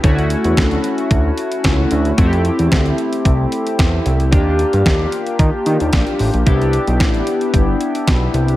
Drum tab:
HH |xxxxxxxxx-xxx-xx|xxxxxxxxx-xxx-xx|x-xxx-xxx-xxxxox|xxxxxxxxx-xxx-xx|
SD |----o-------o---|----o-------o---|----o-------o---|----o-------o---|
BD |o---o---o---o---|o---o---o---o---|o---o---o---o---|o---o---o---o---|